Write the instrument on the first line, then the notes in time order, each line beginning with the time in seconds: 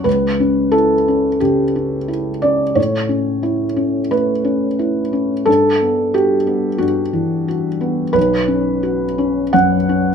felt piano
0.04 C#2 B4
0.40 C#4
0.72 E4 A4
1.08 C#4
1.40 C#3 G4
1.76 C#4
2.08 E4
2.42 C#4 D5
2.75 A2 C#5
3.09 C#4
3.43 E4
3.76 C#4
4.11 A3 B4
4.44 C#4
4.79 E4
5.13 C#4
5.46 G2 A4
5.81 B3
6.14 F#4 G4
6.47 B3
6.78 G2 F#4
7.13 E3
7.48 F#4
7.81 B3
8.13 B1 B4
8.48 C#4
8.83 F#4
9.18 C#4
9.53 F#2 F#5
9.89 C#4